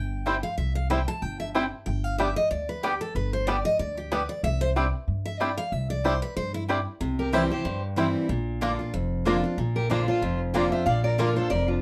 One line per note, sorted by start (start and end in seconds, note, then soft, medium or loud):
0.00 0.41 G1 medium
0.00 0.43 G5 loud
0.26 0.34 G3 medium
0.26 0.36 C4 loud
0.26 0.34 C4 medium
0.26 0.36 E4 loud
0.26 0.34 E4 medium
0.26 0.36 C5 medium
0.26 0.36 G5 loud
0.43 0.57 F5 loud
0.58 1.05 C2 medium
0.58 0.75 E5 loud
0.75 0.90 F5 medium
0.90 0.98 G3 medium
0.90 1.00 C4 medium
0.90 0.98 C4 medium
0.90 1.00 E4 medium
0.90 0.99 E4 medium
0.90 1.01 C5 medium
0.90 1.07 G5 medium
0.90 1.01 G5 medium
1.08 1.22 A5 loud
1.22 1.70 G1 medium
1.22 1.39 G5 medium
1.40 1.49 E5 loud
1.54 1.63 G3 medium
1.54 1.65 C4 medium
1.54 1.63 C4 medium
1.54 1.65 E4 medium
1.54 1.63 E4 medium
1.54 1.65 C5 medium
1.54 1.65 G5 loud
1.86 2.34 G1 loud
1.86 2.04 G5 medium
2.04 2.18 F5 loud
2.18 2.27 G3 medium
2.18 2.29 B3 medium
2.18 2.27 B3 medium
2.18 2.27 D4 medium
2.18 2.29 G4 medium
2.18 2.29 D5 medium
2.18 2.36 E5 loud
2.18 2.29 G5 medium
2.36 2.50 D#5 loud
2.51 2.99 D2 medium
2.51 2.68 D5 medium
2.69 2.83 B4 medium
2.83 2.91 G3 medium
2.83 2.93 B3 medium
2.83 2.92 B3 medium
2.83 2.92 D4 medium
2.83 3.01 G4 medium
2.83 2.94 G4 loud
2.83 2.94 D5 loud
2.83 2.94 G5 loud
3.01 3.15 A4 medium
3.15 3.63 G1 loud
3.15 3.33 B4 medium
3.33 3.47 C5 loud
3.47 3.56 G3 medium
3.47 3.57 B3 medium
3.47 3.56 B3 medium
3.47 3.56 D4 medium
3.47 3.58 G4 medium
3.47 3.64 D5 loud
3.47 3.58 D5 loud
3.47 3.58 G5 medium
3.65 3.79 D#5 loud
3.79 4.27 D2 medium
3.79 3.97 D5 loud
3.97 4.11 G4 medium
4.11 4.20 G3 medium
4.11 4.22 B3 loud
4.11 4.20 B3 medium
4.11 4.20 D4 medium
4.11 4.22 G4 medium
4.11 4.29 B4 medium
4.11 4.22 D5 loud
4.11 4.22 G5 loud
4.29 4.43 D5 medium
4.43 4.91 C2 loud
4.43 4.61 E5 loud
4.61 4.70 C5 loud
4.76 4.84 G3 medium
4.76 4.86 C4 medium
4.76 4.84 C4 medium
4.76 4.84 D4 medium
4.76 4.86 E4 medium
4.76 4.86 D5 medium
4.76 4.87 G5 loud
5.08 5.55 G2 medium
5.26 5.40 E5 loud
5.40 5.48 G3 medium
5.40 5.50 C4 medium
5.40 5.49 C4 medium
5.40 5.49 D4 medium
5.40 5.50 E4 loud
5.40 5.57 D5 loud
5.40 5.51 D5 medium
5.40 5.51 G5 loud
5.58 5.72 F5 loud
5.72 6.20 C2 loud
5.72 5.90 E5 loud
5.90 6.04 D5 loud
6.04 6.13 G3 medium
6.04 6.14 C4 medium
6.04 6.13 C4 medium
6.04 6.13 D4 medium
6.04 6.15 E4 loud
6.04 6.22 C5 medium
6.04 6.15 D5 medium
6.04 6.15 G5 medium
6.22 6.36 B4 medium
6.37 6.84 G2 medium
6.37 6.54 C5 loud
6.54 6.63 E4 medium
6.68 6.77 G3 medium
6.68 6.79 C4 medium
6.68 6.77 C4 medium
6.68 6.77 D4 medium
6.68 6.79 E4 medium
6.68 6.79 D5 medium
6.68 6.79 G5 loud
7.01 7.48 C2 medium
7.01 7.62 C3 medium
7.19 7.34 G4 medium
7.19 7.34 A#4 medium
7.33 7.50 E3 medium
7.33 7.50 G3 medium
7.33 7.41 G3 medium
7.33 7.43 C4 medium
7.33 7.50 C4 medium
7.33 7.41 C4 medium
7.33 7.43 E4 medium
7.33 7.49 E4 medium
7.33 7.42 E4 medium
7.33 7.51 G4 medium
7.33 7.43 C5 medium
7.33 7.50 C5 medium
7.33 7.44 G5 medium
7.51 7.65 C4 soft
7.51 7.65 E4 medium
7.51 7.81 G4 medium
7.51 7.81 C5 medium
7.65 8.13 G2 medium
7.65 8.27 G2 medium
7.96 8.28 E3 medium
7.96 8.28 G3 medium
7.96 8.05 G3 medium
7.96 8.07 C4 medium
7.96 8.28 C4 medium
7.96 8.06 C4 medium
7.96 8.08 E4 medium
7.96 8.28 E4 medium
7.96 8.06 E4 medium
7.96 8.08 C5 medium
7.96 8.08 G5 loud
8.29 8.77 A#1 loud
8.29 8.91 A#2 medium
8.61 8.79 D3 medium
8.61 8.71 A#3 medium
8.61 8.79 A#3 medium
8.61 8.70 A#3 medium
8.61 8.79 D4 medium
8.61 8.70 D4 medium
8.61 8.72 F4 medium
8.61 8.78 F4 loud
8.61 8.72 D5 medium
8.61 8.72 A#5 loud
8.79 8.94 D4 soft
8.79 8.93 F4 medium
8.94 9.41 F1 medium
8.94 9.55 F2 medium
9.25 9.43 D3 medium
9.25 9.36 A#3 medium
9.25 9.43 A#3 medium
9.25 9.34 A#3 medium
9.25 9.43 D4 medium
9.25 9.35 D4 medium
9.25 9.36 F4 medium
9.25 9.42 F4 loud
9.25 9.36 D5 medium
9.25 9.36 A#5 medium
9.44 9.58 D4 soft
9.44 9.58 F4 medium
9.58 10.05 A#1 medium
9.58 10.20 A#2 medium
9.76 9.89 G4 medium
9.76 9.90 A#4 medium
9.90 10.07 D3 medium
9.90 10.07 A#3 medium
9.90 10.00 A#3 medium
9.90 9.98 A#3 medium
9.90 10.08 D4 medium
9.90 9.99 D4 medium
9.90 10.00 F4 medium
9.90 10.07 F4 medium
9.90 10.07 C5 medium
9.90 10.01 D5 medium
9.90 10.01 A#5 medium
10.08 10.23 D4 medium
10.08 10.22 F4 medium
10.08 10.38 F4 medium
10.08 10.38 C5 medium
10.22 10.70 F1 medium
10.22 10.84 F2 loud
10.54 10.71 D3 medium
10.54 10.72 A#3 medium
10.54 10.64 A#3 medium
10.54 10.63 A#3 medium
10.54 10.72 D4 medium
10.54 10.63 D4 medium
10.54 10.65 F4 loud
10.54 10.71 F4 loud
10.54 10.71 D5 medium
10.54 10.65 D5 medium
10.54 10.71 G5 medium
10.54 10.65 A#5 loud
10.72 10.87 D4 soft
10.72 10.86 F4 medium
10.72 10.86 C5 medium
10.72 10.85 E5 medium
10.86 11.34 A#1 loud
10.86 11.48 A#2 medium
10.86 11.03 D5 medium
10.86 11.03 F5 loud
11.04 11.18 A#4 medium
11.04 11.18 D5 loud
11.18 11.36 D3 medium
11.18 11.29 A#3 medium
11.18 11.36 A#3 medium
11.18 11.27 A#3 medium
11.18 11.36 D4 medium
11.18 11.27 D4 medium
11.18 11.29 F4 medium
11.18 11.35 F4 loud
11.18 11.36 F4 medium
11.18 11.36 A#4 medium
11.18 11.29 D5 medium
11.18 11.29 A#5 medium
11.36 11.51 D4 soft
11.36 11.50 F4 medium
11.36 11.51 A4 medium
11.36 11.51 C5 loud
11.50 11.82 F1 medium
11.50 11.82 F2 medium
11.50 11.68 A#4 medium
11.50 11.68 D5 loud
11.68 11.82 D4 medium
11.68 11.82 F4 medium